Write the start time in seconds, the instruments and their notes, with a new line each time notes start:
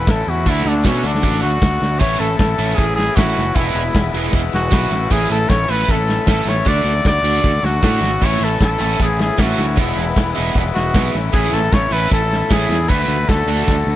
Already playing: trumpet B4
0.07 fingered electric bass A1, overdriven electric guitar E3 A3 C#4 E4, trumpet A4, kick, snare, closed hi-hat, tambourine
0.26 fingered electric bass E2, overdriven electric guitar A3 C#4 E4, trumpet F#4, closed hi-hat, tambourine
0.45 fingered electric bass D2, overdriven electric guitar D3 A3 D4 F#4, trumpet E4, kick, closed hi-hat, tambourine
0.56 tambourine
0.64 fingered electric bass D2, overdriven electric guitar A3 D4 F#4, trumpet D4, closed hi-hat, tambourine
0.75 tambourine
0.84 fingered electric bass B2, overdriven electric guitar D3 A3 D4 F#4, trumpet C#4, kick, snare, closed hi-hat, tambourine
0.96 tambourine
1.03 fingered electric bass D2, trumpet D4, closed hi-hat, tambourine
1.15 snare
1.22 fingered electric bass A1, overdriven electric guitar D3 A3 D4 F#4, kick, closed hi-hat, tambourine
1.35 tambourine
1.42 fingered electric bass D2, overdriven electric guitar A3 D4 F#4, trumpet F#4, glockenspiel F#6, closed hi-hat, tambourine
1.54 tambourine
1.62 fingered electric bass D2, overdriven electric guitar D3 A3 D4 F#4, kick, snare, closed hi-hat, tambourine
1.72 tambourine
1.81 fingered electric bass D2, overdriven electric guitar A3 D4 F#4, snare, closed hi-hat, tambourine
1.91 tambourine
1.99 fingered electric bass A1, overdriven electric guitar A2 E3 A3 C#4 E4, trumpet C#5, glockenspiel C#7, kick, ride
2.19 fingered electric bass A1, trumpet A4, glockenspiel A6, ride
2.30 tambourine
2.38 fingered electric bass A1, overdriven electric guitar E3 A3 C#4 E4, trumpet A4, glockenspiel A6, kick, snare, ride, tambourine
2.58 fingered electric bass A1, overdriven electric guitar E3 A3 C#4 E4, ride, tambourine
2.76 fingered electric bass A1, overdriven electric guitar E3 A3 C#4 E4, trumpet G#4, glockenspiel G#6, kick, ride
2.87 tambourine
2.95 trumpet G#4, glockenspiel G#6, snare, ride, tambourine
3.16 fingered electric bass A1, overdriven electric guitar A2 E3 A3 C#4 E4, trumpet F#4, glockenspiel F#6, kick, snare, ride, tambourine
3.34 fingered electric bass F#1, overdriven electric guitar C#4 E4, snare, ride, tambourine
3.39 overdriven electric guitar A3
3.55 fingered electric bass E1, overdriven electric guitar E2 B2 E3 G#3 B3 E4, trumpet E4, glockenspiel E6, kick, ride
3.75 fingered electric bass E1, ride
3.85 tambourine
3.92 fingered electric bass E1, overdriven electric guitar E3 G#3, kick, snare, ride, tambourine
3.96 overdriven electric guitar B3 E4
4.13 fingered electric bass E1, overdriven electric guitar E3 G#3 B3 E4, ride, tambourine
4.32 fingered electric bass E1, overdriven electric guitar E3 G#3 B3 E4, kick, ride
4.43 tambourine
4.52 fingered electric bass E1, trumpet F#4, glockenspiel F#6, snare, ride, tambourine
4.71 fingered electric bass B1, overdriven electric guitar E2 B2 E3 G#3 B3 E4, kick, snare, ride, tambourine
4.91 fingered electric bass A1, overdriven electric guitar A2 E3 A3 C#4 E4, snare, ride, tambourine
5.10 fingered electric bass A1, overdriven electric guitar A2 E3 A3 C#4 E4, trumpet G#4, glockenspiel G#6, kick, ride
5.30 fingered electric bass A1, trumpet A4, glockenspiel A6, ride
5.39 tambourine
5.49 fingered electric bass A1, overdriven electric guitar E3 A3 C#4 E4, trumpet C#5, glockenspiel C#7, kick, snare, ride, tambourine
5.68 fingered electric bass A1, overdriven electric guitar E3 C#4 E4, trumpet B4, ride, tambourine
5.72 overdriven electric guitar A3, glockenspiel B6
5.88 fingered electric bass A1, overdriven electric guitar E3 A3 C#4 E4, trumpet A4, kick, ride
5.92 glockenspiel A6
5.98 tambourine
6.08 snare, ride, tambourine
6.26 fingered electric bass A1, overdriven electric guitar A2 E3 A3 C#4 E4, trumpet A4, kick, snare, ride, tambourine
6.31 glockenspiel A6
6.45 fingered electric bass A1, overdriven electric guitar A3 C#4 E4, trumpet C#5, snare, ride, tambourine
6.50 glockenspiel C#7
6.64 fingered electric bass D2, overdriven electric guitar D3 A3 D4 F#4, kick, ride, tambourine
6.68 trumpet D5, glockenspiel D7
6.84 fingered electric bass D2, ride, tambourine
6.96 tambourine
7.04 fingered electric bass D2, overdriven electric guitar D3 A3 D4 F#4, trumpet D5, kick, snare, ride, tambourine
7.08 glockenspiel D7
7.23 fingered electric bass D2, overdriven electric guitar D3 A3 D4 F#4, ride, tambourine
7.35 tambourine
7.42 fingered electric bass D2, overdriven electric guitar D3 A3 D4 F#4, kick, ride, tambourine
7.54 tambourine
7.63 fingered electric bass D2, trumpet F#4, glockenspiel F#6, snare, ride, tambourine
7.75 tambourine
7.81 fingered electric bass A2, overdriven electric guitar D3 A3 D4 F#4, kick, snare, ride, tambourine
8.01 fingered electric bass G#1, overdriven electric guitar D4 F#4, snare, ride, tambourine
8.05 overdriven electric guitar A3
8.13 tambourine
8.21 fingered electric bass A1, overdriven electric guitar A2 E3 A3 C#4 E4, glockenspiel C#7, kick, crash
8.25 trumpet C#5
8.41 fingered electric bass A1, trumpet A4, glockenspiel A6, ride
8.52 tambourine
8.61 fingered electric bass A1, overdriven electric guitar E3 A3 C#4 E4, glockenspiel A6, kick, snare, ride, tambourine
8.65 trumpet A4
8.80 fingered electric bass A1, overdriven electric guitar E3 A3 C#4 E4, ride, tambourine
8.99 fingered electric bass A1, overdriven electric guitar E3 A3 C#4 E4, trumpet G#4, glockenspiel G#6, kick, ride
9.10 tambourine
9.19 trumpet G#4, glockenspiel G#6, snare, ride, tambourine
9.38 fingered electric bass A1, overdriven electric guitar A2 E3 A3 C#4 E4, trumpet F#4, kick, snare, ride, tambourine
9.42 glockenspiel F#6
9.58 fingered electric bass D2, overdriven electric guitar A3 C#4 E4, snare, ride, tambourine
9.77 fingered electric bass E1, overdriven electric guitar E2 B2 E3 G#3 B3 E4, trumpet E4, glockenspiel E6, kick, ride
9.96 fingered electric bass E1, ride
10.07 tambourine
10.16 fingered electric bass E1, overdriven electric guitar E3 G#3 B3 E4, kick, snare, ride, tambourine
10.35 fingered electric bass E1, overdriven electric guitar E3 G#3 B3 E4, ride, tambourine
10.55 fingered electric bass E1, overdriven electric guitar E3 G#3 B3, kick, ride
10.59 overdriven electric guitar E4
10.66 tambourine
10.75 fingered electric bass E1, trumpet F#4, glockenspiel F#6, snare, ride, tambourine
10.94 fingered electric bass B1, overdriven electric guitar E2 B2 E3 G#3 B3, kick, snare, ride, tambourine
10.98 overdriven electric guitar E4
11.14 fingered electric bass A1, overdriven electric guitar A2 E3 A3 C#4 E4, snare, ride, tambourine
11.33 fingered electric bass A1, overdriven electric guitar A2 E3 A3 C#4 E4, trumpet G#4, glockenspiel G#6, kick, ride
11.53 fingered electric bass A1, trumpet A4, glockenspiel A6, ride
11.63 tambourine
11.72 fingered electric bass A1, overdriven electric guitar E3 A3 C#4, trumpet C#5, glockenspiel C#7, kick, snare, ride, tambourine
11.77 overdriven electric guitar E4
11.91 fingered electric bass A1, overdriven electric guitar E3 A3 C#4 E4, trumpet B4, glockenspiel B6, ride, tambourine
11.96 overdriven electric guitar A3
12.11 fingered electric bass A1, overdriven electric guitar E3 A3 C#4 E4, trumpet A4, glockenspiel A6, kick, ride
12.22 tambourine
12.31 snare, ride, tambourine
12.50 fingered electric bass A1, overdriven electric guitar A2 E3 A3 C#4 E4, trumpet G#4, glockenspiel G#6, kick, snare, ride, tambourine
12.69 fingered electric bass E2, overdriven electric guitar C#4 E4, snare, ride, tambourine
12.74 overdriven electric guitar A3
12.89 fingered electric bass D2, overdriven electric guitar D3 A3 D4, trumpet B4, glockenspiel B6, kick, ride, tambourine
12.93 overdriven electric guitar F#4
12.99 tambourine
13.08 fingered electric bass D2, ride, tambourine
13.19 tambourine
13.29 fingered electric bass D2, overdriven electric guitar D3 A3 D4 F#4, trumpet A4, glockenspiel A6, kick, snare, ride, tambourine
13.47 fingered electric bass D2, overdriven electric guitar D3 D4 F#4, ride, tambourine
13.51 overdriven electric guitar A3
13.67 fingered electric bass D2, overdriven electric guitar D3 A3 D4, kick, snare
13.71 overdriven electric guitar F#4
13.78 tambourine
13.87 fingered electric bass D2, tambourine